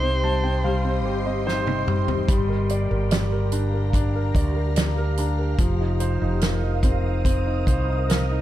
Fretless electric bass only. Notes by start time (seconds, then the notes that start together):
Already playing: C2
1.06 G1
2.29 G1
2.91 G1
4.35 D2
5.59 F1
6.22 F1
7.67 C2